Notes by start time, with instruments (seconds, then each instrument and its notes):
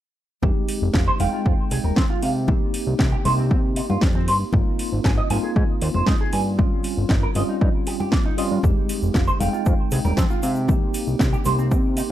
0.42 analog synth bass F1, tine electric piano G#3 C4 D#4 G4, kick, high conga
0.69 open hi-hat
0.82 analog synth bass F1
0.94 analog synth bass F1, clean electric guitar F4, kick, snare
1.08 clean electric guitar C5
1.19 analog synth bass F1, tine electric piano G#3 C4 D#4 G5, clean electric guitar F5, open hi-hat, high conga
1.33 clean electric guitar F4
1.46 analog synth bass F2, clean electric guitar F4, kick
1.71 analog synth bass C2, clean electric guitar G#4, open hi-hat
1.84 analog synth bass D#1, clean electric guitar A#4, high conga
1.96 analog synth bass F2, clean electric guitar C4, kick, snare
2.10 clean electric guitar F4
2.23 analog synth bass C3, clean electric guitar F5, open hi-hat
2.47 tine electric piano A#3 C4 D#4 G4, kick, high conga
2.74 open hi-hat
2.87 analog synth bass C2
2.99 analog synth bass C2, clean electric guitar C4, kick, snare
3.12 clean electric guitar G4
3.24 analog synth bass C2, tine electric piano A#3 C4 D#4 G4, clean electric guitar C5, open hi-hat, high conga
3.38 clean electric guitar C4
3.51 analog synth bass C3, clean electric guitar C4, kick
3.76 clean electric guitar D#4, open hi-hat
3.90 analog synth bass G2, clean electric guitar F4, high conga
4.01 analog synth bass F2, clean electric guitar G3, kick, snare
4.15 clean electric guitar C4
4.28 analog synth bass G2, clean electric guitar C5, open hi-hat
4.53 analog synth bass G#1, tine electric piano A#3 C4 D#4 F4, kick, high conga
4.79 open hi-hat
4.92 analog synth bass G#1
5.04 analog synth bass G#1, clean electric guitar G#4, kick, snare
5.18 clean electric guitar D#5
5.30 analog synth bass G#1, tine electric piano A#3 C4 D#4 F4, clean electric guitar G#5, open hi-hat, high conga
5.43 clean electric guitar G#4
5.56 analog synth bass G#2, clean electric guitar G#4, kick
5.82 analog synth bass D#2, clean electric guitar C5, open hi-hat
5.94 analog synth bass F1, clean electric guitar C5, high conga
6.06 analog synth bass G#2, clean electric guitar D#4, kick, snare
6.21 clean electric guitar G#4
6.33 analog synth bass G2, clean electric guitar G#5, open hi-hat
6.58 tine electric piano G3 C4 C#4 F4, kick, high conga
6.84 open hi-hat
6.97 analog synth bass G1
7.09 analog synth bass G1, clean electric guitar D#4, kick, snare
7.23 clean electric guitar A#4
7.35 analog synth bass G1, tine electric piano G3 C4 C#4 F4, clean electric guitar D#5, open hi-hat, high conga
7.49 clean electric guitar D#4
7.61 analog synth bass G2, clean electric guitar D#4, kick
7.87 clean electric guitar G4, open hi-hat
8.00 clean electric guitar G4, high conga
8.12 clean electric guitar A#3, kick, snare
8.26 clean electric guitar D#4
8.37 analog synth bass G2, tine electric piano G3 C4 C#4 F4, clean electric guitar D#5, open hi-hat
8.51 analog synth bass G2
8.63 analog synth bass F1, tine electric piano G#3 C4 D#4 G4, kick, high conga, shaker
8.89 open hi-hat, shaker
9.02 analog synth bass F1, shaker
9.14 analog synth bass F1, clean electric guitar F4, kick, snare, shaker
9.27 clean electric guitar C5, shaker
9.39 analog synth bass F1, tine electric piano G#3 C4 D#4 G5, clean electric guitar F5, open hi-hat, high conga, shaker
9.53 clean electric guitar F4, shaker
9.66 analog synth bass F2, clean electric guitar F4, kick, shaker
9.91 analog synth bass C2, clean electric guitar G#4, open hi-hat, shaker
10.05 analog synth bass D#1, clean electric guitar A#4, high conga, shaker
10.17 analog synth bass F2, clean electric guitar C4, kick, snare, shaker
10.30 clean electric guitar F4, shaker
10.43 analog synth bass C3, clean electric guitar F5, open hi-hat, shaker
10.55 shaker
10.68 tine electric piano A#3 C4 D#4 G4, kick, high conga, low conga, shaker
10.94 open hi-hat, shaker
11.07 analog synth bass C2, shaker
11.19 analog synth bass C2, clean electric guitar C4, kick, snare, shaker
11.33 clean electric guitar G4, shaker
11.45 analog synth bass C2, tine electric piano A#3 C4 D#4 G4, clean electric guitar C5, open hi-hat, high conga, shaker
11.59 clean electric guitar C4, shaker
11.71 analog synth bass C3, clean electric guitar C4, kick, shaker
11.97 clean electric guitar D#4, open hi-hat, shaker